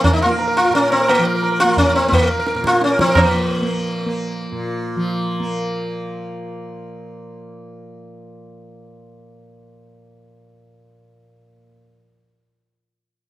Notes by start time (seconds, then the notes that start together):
Already playing: A#2 F3 A#3
0.04 C#4, tabla tin, tabla ge
0.13 D#4
0.22 A#3 F4, tabla na
0.30 A#4
0.39 A#4, tabla tin
0.48 A#4
0.57 F4
0.65 A#4
0.70 A#2, tabla tin
0.75 C#4
0.83 A#4
0.91 C4, tabla na
1.01 A#4
1.08 A#3, tabla na
1.18 F3 A#4
1.26 A#4
1.35 A#4
1.43 A#4, tabla tin
1.52 A#4
1.60 F4
1.64 A#3
1.69 A#4
1.77 C#4, tabla tin, tabla ge
1.86 A#4
1.96 C4
2.08 A#3 C4, tabla tin, tabla ge
2.13 A#3
2.22 A#4
2.31 A#4
2.39 A#4
2.47 A#4, tabla te
2.54 A#2 A#4, tabla te
2.64 F4, tabla ke
2.73 tabla te
2.82 C#4, tabla te
2.90 A#4, tabla te
2.99 F3 C4, tabla ke
3.07 A#4, tabla te
3.15 F3 A#3, tabla na, tabla ge
3.62 A#3
4.06 A#3
4.52 A#2
4.96 F3
5.40 A#3